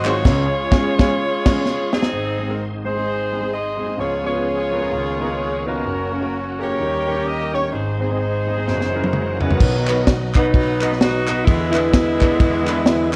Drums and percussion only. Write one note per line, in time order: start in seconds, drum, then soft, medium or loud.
0.05 clap loud
0.05 ride medium
0.25 kick loud
0.25 snare loud
0.25 crash medium
0.72 kick loud
0.72 snare loud
0.99 kick loud
0.99 snare loud
1.46 kick loud
1.46 snare loud
1.46 crash medium
1.65 snare medium
1.93 snare medium
2.02 snare loud
8.67 snare soft
8.81 snare soft
9.03 high tom medium
9.13 mid tom medium
9.40 floor tom medium
9.50 floor tom medium
9.60 kick loud
9.60 crash medium
9.87 clap loud
9.87 ride medium
10.07 kick medium
10.07 snare loud
10.07 ride medium
10.34 kick medium
10.34 clap medium
10.34 ride medium
10.54 kick loud
10.54 ride medium
10.81 clap medium
10.81 ride medium
10.92 snare soft
11.01 snare loud
11.01 ride medium
11.27 clap loud
11.27 ride medium
11.47 kick loud
11.47 ride medium
11.74 clap loud
11.74 ride medium
11.94 kick loud
11.94 snare loud
11.94 ride medium
12.21 kick medium
12.21 clap medium
12.21 ride medium
12.40 kick loud
12.40 ride medium
12.67 clap medium
12.67 ride medium
12.86 snare loud
12.86 ride medium